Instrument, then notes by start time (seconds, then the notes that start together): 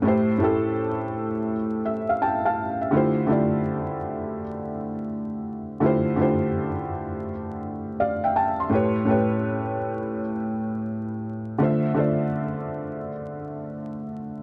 felt piano
0.02 A2 A3 E4
0.07 G4 C5
0.38 A2 A3 E4
0.42 G4 A4
1.85 E5
2.09 F5
2.22 G5 A5
2.45 F5 A5
2.81 E5
2.91 D3 A3 E4 F4
2.96 G4 C5
3.27 D3 A3 E4 F4
3.32 G4 D5
5.80 D3 A3 E4 F4
5.85 G4 C5
6.16 D3 A3 E4 F4
6.21 G4 C5
8.00 D5 F5
8.24 E5 G5
8.36 G5 A5
8.60 C6
8.70 A2 A3 G4
8.74 B4 C#5
9.05 A2 A3 G4
9.10 B4 C#5
11.58 D3 A3 F4
11.63 C5 E5
11.94 D3 A3 F4
11.99 C5 D5